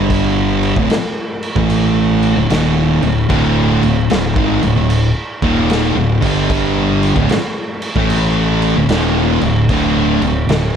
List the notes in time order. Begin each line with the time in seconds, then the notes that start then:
Already playing: G1 G2 D3 G3
0.10 kick, crash
0.63 crash
0.76 D1 D2 A2, kick
0.90 muted fingered electric bass stroke, muted distorted electric guitar stroke, snare, crash
1.43 crash
1.56 A1 A2 E3 A3, kick
1.70 crash
2.23 crash
2.36 D1 D2 A2
2.50 D#1 D#2 A#2 D#3, snare, crash
3.03 D1 D2 A2, crash
3.29 D1 D2 A2 D3, kick, crash
3.82 D1 D2 A2, crash
4.10 D1 D2 A2, snare, crash
4.36 G#1 G#2 D#3, kick
4.63 D1 D2 A2, crash
4.76 D1 D2 A2
4.90 crash
5.42 D#1 D#2 A#2 D#3, kick, crash
5.70 snare, crash
5.95 D1 D2 A2
6.22 G1 G2 D3 G3, kick, crash
6.50 kick, crash
7.03 crash
7.16 D1 D2 A2, kick
7.29 muted distorted electric guitar stroke, muted fingered electric bass stroke, snare, crash
7.82 crash
7.96 A1 A2 E3 A3, kick
8.10 crash
8.62 crash
8.75 D1 D2 A2
8.89 D#1 D#2 A#2 D#3, snare, crash
9.42 D1 D2 A2, crash
9.69 D1 D2 A2 D3, kick, crash
10.22 D1 D2 A2, crash
10.49 D1 D2 A2, snare, crash